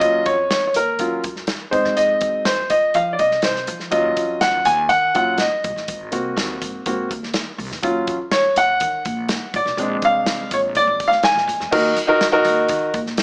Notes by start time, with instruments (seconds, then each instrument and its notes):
0.00 upright bass D#2, grand piano F#3 C#4 F4 D#5, kick, closed hi-hat
0.26 upright bass F2, grand piano C#5, kick, closed hi-hat
0.51 grand piano C#5, snare, closed hi-hat
0.67 grand piano C#5
0.74 upright bass D#2, grand piano A#4, closed hi-hat
0.99 grand piano F#3 C#4 F4, kick, closed hi-hat
1.24 upright bass F#2, kick, closed hi-hat
1.36 snare
1.47 snare, closed hi-hat
1.71 upright bass F2, grand piano G#3 C4 D#4 C5, kick, closed hi-hat
1.84 upright bass F#2, snare
1.97 upright bass F2, grand piano D#5, closed hi-hat
2.21 upright bass F#2, kick, closed hi-hat
2.45 grand piano C5, snare, closed hi-hat
2.70 upright bass F2, grand piano D#5, kick, closed hi-hat
2.94 upright bass F3, grand piano F5, kick, closed hi-hat
3.13 grand piano D5
3.19 upright bass C2, grand piano D#5, kick, closed hi-hat
3.31 snare
3.42 upright bass C2, grand piano C5, snare, closed hi-hat
3.55 snare
3.67 upright bass F3, closed hi-hat
3.80 snare
3.91 upright bass D#2, grand piano F#3 C#4 F4 D#5, kick, closed hi-hat
4.17 upright bass F2, kick, closed hi-hat
4.41 upright bass D#2, grand piano F#5, snare, closed hi-hat
4.65 upright bass D#2, grand piano G#5, closed hi-hat
4.89 upright bass D#3, grand piano F#5, kick, closed hi-hat
5.14 upright bass A#1, grand piano F#3 C#4 F4 F#5, kick, closed hi-hat
5.38 grand piano D#5, snare, closed hi-hat
5.64 upright bass C2, kick, closed hi-hat
5.76 upright bass A1, snare
5.88 upright bass G#1, kick, closed hi-hat
6.12 upright bass C2, grand piano A#3 C4 F#4, kick, closed hi-hat
6.36 upright bass D#2, snare, closed hi-hat
6.62 upright bass G#2, kick, closed hi-hat
6.86 upright bass G#2, grand piano A#3 C4 F#4, kick, closed hi-hat
7.11 upright bass D#2, kick, closed hi-hat
7.23 snare
7.34 snare, closed hi-hat
7.58 upright bass C2, open hi-hat
7.71 upright bass E2, snare
7.82 upright bass D#2, grand piano F#3 C#4 F4, kick, closed hi-hat
8.07 upright bass F2, kick, closed hi-hat
8.31 grand piano C#5, snare, closed hi-hat
8.56 upright bass D#2, grand piano F#5, closed hi-hat
8.80 upright bass D#3, kick, closed hi-hat
9.05 upright bass A#1, kick, closed hi-hat
9.29 snare, closed hi-hat
9.54 upright bass A#1, grand piano D5, kick, closed hi-hat
9.66 upright bass B1, snare
9.77 upright bass A#1, grand piano G#3 C4 D4, closed hi-hat
10.02 upright bass C2, grand piano F5, kick, closed hi-hat
10.26 snare, closed hi-hat
10.51 upright bass A#1, grand piano C#5, kick, closed hi-hat
10.75 upright bass A#2, grand piano D5, kick, closed hi-hat
10.87 upright bass A#1
11.00 kick, closed hi-hat
11.08 upright bass D2, grand piano F5
11.12 snare
11.23 grand piano G#5, snare, closed hi-hat
11.35 upright bass A#1, snare
11.47 upright bass F2, closed hi-hat
11.60 upright bass E2, snare
11.71 upright bass D#2, grand piano D#4 F#4 A#4, kick, crash
11.96 upright bass F2, closed hi-hat
12.07 grand piano D#4 F#4 A#4
12.21 snare, closed hi-hat
12.32 grand piano D#4 F#4 A#4
12.45 upright bass D#2, closed hi-hat
12.69 upright bass D#3, kick, closed hi-hat
12.94 upright bass A#1, kick, closed hi-hat
13.06 snare
13.17 snare, closed hi-hat